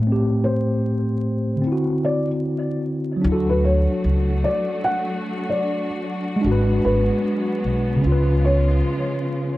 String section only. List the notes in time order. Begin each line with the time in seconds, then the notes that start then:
3.23 F#3 A3 D4 F#4
6.43 F#3 G#3 B3
8.02 C#3 F3 G#3 F4